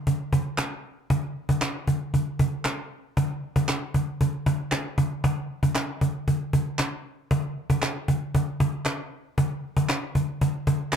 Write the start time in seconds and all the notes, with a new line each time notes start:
0.07 cajon bass
0.33 cajon bass
0.58 cajon slap, clap
1.10 cajon bass
1.49 cajon bass
1.61 cajon slap, clap
1.88 cajon bass
2.14 cajon bass
2.39 cajon bass
2.65 cajon slap, clap
3.17 cajon bass
3.56 cajon bass
3.68 cajon slap, clap
3.94 cajon bass
4.21 cajon bass
4.46 cajon bass
4.72 cajon slap, clap
4.98 cajon bass
5.24 cajon bass
5.63 cajon bass
5.75 cajon slap, clap
6.01 cajon bass
6.28 cajon bass
6.53 cajon bass
6.79 cajon slap, clap
7.31 cajon bass
7.70 cajon bass
7.82 cajon slap, clap
8.08 cajon bass
8.35 cajon bass
8.60 cajon bass
8.85 cajon slap, clap
9.38 cajon bass
9.77 cajon bass
9.89 cajon slap, clap
10.15 cajon bass
10.41 cajon bass
10.67 cajon bass
10.92 cajon slap, clap